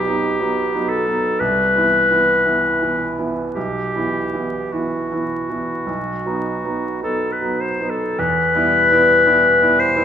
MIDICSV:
0, 0, Header, 1, 3, 480
1, 0, Start_track
1, 0, Key_signature, 1, "minor"
1, 0, Tempo, 1023891
1, 1144, Tempo, 1113173
1, 1624, Tempo, 1153846
1, 1625, Time_signature, 4, 2, 24, 8
1, 3544, Tempo, 1069519
1, 4386, End_track
2, 0, Start_track
2, 0, Title_t, "Clarinet"
2, 0, Program_c, 0, 71
2, 0, Note_on_c, 0, 67, 81
2, 418, Note_on_c, 0, 69, 72
2, 425, Note_off_c, 0, 67, 0
2, 653, Note_on_c, 0, 71, 85
2, 660, Note_off_c, 0, 69, 0
2, 1491, Note_off_c, 0, 71, 0
2, 1619, Note_on_c, 0, 67, 62
2, 2111, Note_on_c, 0, 66, 48
2, 2117, Note_off_c, 0, 67, 0
2, 3065, Note_off_c, 0, 66, 0
2, 3067, Note_on_c, 0, 69, 65
2, 3190, Note_on_c, 0, 71, 56
2, 3196, Note_off_c, 0, 69, 0
2, 3311, Note_on_c, 0, 72, 57
2, 3318, Note_off_c, 0, 71, 0
2, 3431, Note_on_c, 0, 69, 67
2, 3437, Note_off_c, 0, 72, 0
2, 3552, Note_on_c, 0, 71, 94
2, 3559, Note_off_c, 0, 69, 0
2, 4276, Note_on_c, 0, 72, 86
2, 4282, Note_off_c, 0, 71, 0
2, 4386, Note_off_c, 0, 72, 0
2, 4386, End_track
3, 0, Start_track
3, 0, Title_t, "Grand piano"
3, 0, Program_c, 1, 0
3, 0, Control_c, 1, 64, 127
3, 0, Note_on_c, 1, 35, 53
3, 0, Note_on_c, 1, 54, 40
3, 0, Note_on_c, 1, 59, 40
3, 0, Note_on_c, 1, 63, 40
3, 32, Note_off_c, 1, 54, 0
3, 32, Note_off_c, 1, 59, 0
3, 32, Note_on_c, 1, 54, 40
3, 32, Note_on_c, 1, 59, 37
3, 34, Note_off_c, 1, 63, 0
3, 34, Note_on_c, 1, 63, 44
3, 170, Note_off_c, 1, 54, 0
3, 170, Note_off_c, 1, 59, 0
3, 171, Note_off_c, 1, 63, 0
3, 185, Note_on_c, 1, 54, 41
3, 189, Note_on_c, 1, 59, 38
3, 190, Note_on_c, 1, 63, 40
3, 326, Note_off_c, 1, 54, 0
3, 328, Note_off_c, 1, 59, 0
3, 329, Note_off_c, 1, 63, 0
3, 348, Note_on_c, 1, 54, 40
3, 348, Note_on_c, 1, 59, 40
3, 351, Note_on_c, 1, 63, 43
3, 487, Note_off_c, 1, 54, 0
3, 487, Note_off_c, 1, 59, 0
3, 489, Note_off_c, 1, 63, 0
3, 505, Note_on_c, 1, 54, 35
3, 506, Note_on_c, 1, 59, 40
3, 509, Note_on_c, 1, 63, 42
3, 645, Note_off_c, 1, 54, 0
3, 646, Note_off_c, 1, 59, 0
3, 647, Note_off_c, 1, 63, 0
3, 658, Note_on_c, 1, 36, 54
3, 665, Control_c, 1, 64, 0
3, 666, Note_off_c, 1, 35, 0
3, 739, Control_c, 1, 64, 127
3, 813, Note_off_c, 1, 36, 0
3, 823, Note_on_c, 1, 52, 38
3, 825, Note_on_c, 1, 59, 36
3, 829, Note_on_c, 1, 64, 43
3, 967, Note_off_c, 1, 52, 0
3, 968, Note_off_c, 1, 59, 0
3, 970, Note_off_c, 1, 64, 0
3, 988, Note_on_c, 1, 52, 36
3, 991, Note_on_c, 1, 59, 34
3, 993, Note_on_c, 1, 64, 40
3, 1133, Note_off_c, 1, 52, 0
3, 1135, Note_off_c, 1, 59, 0
3, 1136, Note_off_c, 1, 64, 0
3, 1149, Note_on_c, 1, 52, 35
3, 1149, Note_on_c, 1, 59, 36
3, 1152, Note_on_c, 1, 64, 40
3, 1287, Note_off_c, 1, 52, 0
3, 1287, Note_off_c, 1, 59, 0
3, 1288, Note_off_c, 1, 64, 0
3, 1306, Note_on_c, 1, 52, 34
3, 1309, Note_on_c, 1, 59, 33
3, 1312, Note_on_c, 1, 64, 37
3, 1447, Note_off_c, 1, 52, 0
3, 1449, Note_off_c, 1, 59, 0
3, 1450, Note_off_c, 1, 64, 0
3, 1467, Note_on_c, 1, 52, 31
3, 1468, Note_on_c, 1, 59, 32
3, 1468, Note_on_c, 1, 64, 32
3, 1613, Note_off_c, 1, 52, 0
3, 1614, Note_off_c, 1, 59, 0
3, 1614, Note_off_c, 1, 64, 0
3, 1631, Note_on_c, 1, 35, 46
3, 1633, Control_c, 1, 64, 0
3, 1710, Control_c, 1, 64, 127
3, 1786, Note_off_c, 1, 35, 0
3, 1791, Note_on_c, 1, 52, 32
3, 1791, Note_on_c, 1, 59, 32
3, 1795, Note_on_c, 1, 64, 36
3, 1936, Note_off_c, 1, 52, 0
3, 1936, Note_off_c, 1, 59, 0
3, 1938, Note_off_c, 1, 64, 0
3, 1950, Note_on_c, 1, 52, 30
3, 1954, Note_on_c, 1, 59, 33
3, 1955, Note_on_c, 1, 64, 33
3, 2096, Note_off_c, 1, 52, 0
3, 2097, Note_off_c, 1, 59, 0
3, 2098, Note_off_c, 1, 64, 0
3, 2113, Note_on_c, 1, 59, 33
3, 2114, Note_on_c, 1, 52, 30
3, 2116, Note_on_c, 1, 64, 33
3, 2257, Note_off_c, 1, 59, 0
3, 2258, Note_off_c, 1, 52, 0
3, 2259, Note_off_c, 1, 64, 0
3, 2273, Note_on_c, 1, 52, 31
3, 2274, Note_on_c, 1, 59, 31
3, 2277, Note_on_c, 1, 64, 31
3, 2417, Note_off_c, 1, 52, 0
3, 2417, Note_off_c, 1, 59, 0
3, 2419, Note_off_c, 1, 64, 0
3, 2430, Note_on_c, 1, 52, 30
3, 2433, Note_on_c, 1, 59, 31
3, 2434, Note_on_c, 1, 64, 30
3, 2574, Note_off_c, 1, 52, 0
3, 2575, Note_off_c, 1, 59, 0
3, 2576, Note_off_c, 1, 64, 0
3, 2588, Note_on_c, 1, 35, 39
3, 2597, Control_c, 1, 64, 0
3, 2686, Control_c, 1, 64, 127
3, 2743, Note_off_c, 1, 35, 0
3, 2747, Note_on_c, 1, 54, 30
3, 2750, Note_on_c, 1, 59, 29
3, 2753, Note_on_c, 1, 63, 35
3, 2891, Note_off_c, 1, 54, 0
3, 2892, Note_off_c, 1, 59, 0
3, 2894, Note_off_c, 1, 63, 0
3, 2910, Note_on_c, 1, 54, 30
3, 2911, Note_on_c, 1, 59, 30
3, 2913, Note_on_c, 1, 63, 34
3, 3052, Note_off_c, 1, 54, 0
3, 3053, Note_off_c, 1, 59, 0
3, 3054, Note_off_c, 1, 63, 0
3, 3068, Note_on_c, 1, 54, 31
3, 3069, Note_on_c, 1, 59, 33
3, 3072, Note_on_c, 1, 63, 34
3, 3212, Note_off_c, 1, 54, 0
3, 3212, Note_off_c, 1, 59, 0
3, 3214, Note_off_c, 1, 63, 0
3, 3229, Note_on_c, 1, 54, 30
3, 3233, Note_on_c, 1, 59, 29
3, 3233, Note_on_c, 1, 63, 34
3, 3374, Note_off_c, 1, 54, 0
3, 3376, Note_off_c, 1, 59, 0
3, 3376, Note_off_c, 1, 63, 0
3, 3394, Note_on_c, 1, 54, 29
3, 3396, Note_on_c, 1, 59, 27
3, 3398, Note_on_c, 1, 63, 33
3, 3532, Note_off_c, 1, 54, 0
3, 3533, Note_off_c, 1, 59, 0
3, 3534, Note_off_c, 1, 63, 0
3, 3553, Control_c, 1, 64, 0
3, 3553, Note_on_c, 1, 40, 68
3, 3637, Control_c, 1, 64, 127
3, 3708, Note_off_c, 1, 40, 0
3, 3715, Note_on_c, 1, 55, 50
3, 3715, Note_on_c, 1, 59, 51
3, 3719, Note_on_c, 1, 64, 54
3, 3859, Note_off_c, 1, 55, 0
3, 3859, Note_off_c, 1, 59, 0
3, 3861, Note_off_c, 1, 64, 0
3, 3876, Note_on_c, 1, 55, 49
3, 3880, Note_on_c, 1, 59, 50
3, 3880, Note_on_c, 1, 64, 54
3, 4018, Note_off_c, 1, 55, 0
3, 4020, Note_off_c, 1, 59, 0
3, 4020, Note_off_c, 1, 64, 0
3, 4034, Note_on_c, 1, 55, 45
3, 4036, Note_on_c, 1, 59, 47
3, 4038, Note_on_c, 1, 64, 55
3, 4175, Note_off_c, 1, 55, 0
3, 4175, Note_off_c, 1, 59, 0
3, 4177, Note_off_c, 1, 64, 0
3, 4193, Note_on_c, 1, 55, 48
3, 4194, Note_on_c, 1, 59, 48
3, 4195, Note_on_c, 1, 64, 51
3, 4332, Note_off_c, 1, 55, 0
3, 4333, Note_off_c, 1, 59, 0
3, 4333, Note_off_c, 1, 64, 0
3, 4346, Note_on_c, 1, 55, 50
3, 4350, Note_on_c, 1, 59, 52
3, 4350, Note_on_c, 1, 64, 53
3, 4386, Note_off_c, 1, 55, 0
3, 4386, Note_off_c, 1, 59, 0
3, 4386, Note_off_c, 1, 64, 0
3, 4386, End_track
0, 0, End_of_file